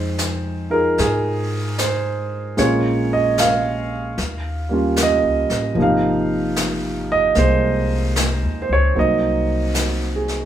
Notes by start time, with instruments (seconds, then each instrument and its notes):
Already playing: upright bass F2, grand piano G#3 C4 D#4 C5 G5
0.18 snare, hi-hat pedal
0.70 grand piano D#4 F4 G#4 A#4
0.98 upright bass G#2, grand piano G#4, brush sweep, snare
1.78 grand piano C5, snare, hi-hat pedal
2.57 upright bass A#1, grand piano G#3 A#3 C#4 F4 C#5, brush sweep, snare
3.13 grand piano D#5
3.38 grand piano F5, snare, hi-hat pedal
4.18 upright bass D#2, brush sweep, snare
4.69 grand piano G3 A#3 C#4
4.73 grand piano F4
4.96 snare, hi-hat pedal
5.03 grand piano D#5
5.24 upright bass C#2
5.49 upright bass A1, snare
5.75 upright bass G#1, grand piano C3 F3 A#3, brush sweep
5.80 grand piano D#4 F5
6.56 snare, hi-hat pedal
7.12 grand piano D#5
7.35 upright bass C2, grand piano G#3 A#3 C5, brush sweep, snare
8.16 snare, hi-hat pedal
8.42 upright bass D#2
8.62 grand piano C5
8.69 upright bass C#2, grand piano C#5
8.95 upright bass C2, grand piano F#3 A#3 C4 D#4, brush sweep
8.99 grand piano D#5
9.74 grand piano F#4, snare, hi-hat pedal
10.16 grand piano G#4
10.28 snare